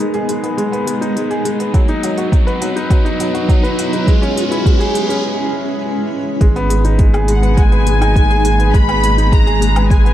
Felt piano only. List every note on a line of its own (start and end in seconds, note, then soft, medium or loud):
0.00 0.29 G#3 medium
0.00 0.43 B3 medium
0.00 1.01 D#4 medium
0.00 0.14 G#4 medium
0.14 0.28 G#4 medium
0.29 0.43 G#3 medium
0.43 0.57 B3 medium
0.57 0.72 G#3 medium
0.72 0.81 B3 medium
0.87 0.95 G#3 medium
1.01 1.10 D#4 medium
1.16 1.30 G#3 medium
1.30 1.45 G#4 medium
1.45 1.59 G#3 medium
1.60 1.74 B3 medium
1.74 1.88 F#3 medium
1.89 1.97 D#4 loud
2.03 2.12 F#3 medium
2.18 2.26 F#4 medium
2.32 2.46 F#3 medium
2.47 2.61 B4 loud
2.61 2.75 F#3 medium
2.76 2.90 D#4 medium
2.90 3.05 F#3 medium
3.05 3.14 D#4 loud
3.20 3.28 F#3 medium
3.34 3.43 F#4 medium
3.49 3.63 F#3 medium
3.63 3.77 B4 loud
3.78 3.92 F#3 medium
3.93 4.07 D#4 medium
4.08 4.22 G#3 medium
4.22 4.30 C#4 loud
4.36 4.45 G#3 medium
4.51 4.60 E4 medium
4.66 4.80 G#3 medium
4.80 4.94 G#4 loud
4.95 5.09 G#3 medium
5.09 5.23 C#4 medium
6.41 6.55 G#3 medium
6.56 6.64 B3 loud
6.70 6.78 G#3 medium
6.85 6.93 D#4 medium
6.99 7.13 G#3 medium
7.14 7.27 G#4 loud
7.28 7.42 G#3 medium
7.42 7.56 B3 medium
7.57 7.71 G#3 loud
7.72 7.80 B3 medium
7.87 7.95 G#3 medium
8.01 8.09 D#4 medium
8.16 8.30 G#3 medium
8.30 8.44 G#4 loud
8.45 8.59 G#3 medium
8.59 8.73 B3 medium
8.74 8.88 G#3 loud
8.88 8.97 B3 loud
9.03 9.11 G#3 medium
9.18 9.26 D#4 medium
9.33 9.46 G#3 medium
9.47 9.60 G#4 loud
9.61 9.75 G#3 medium
9.76 9.90 B3 medium
9.90 10.04 G#3 loud
10.05 10.13 B3 medium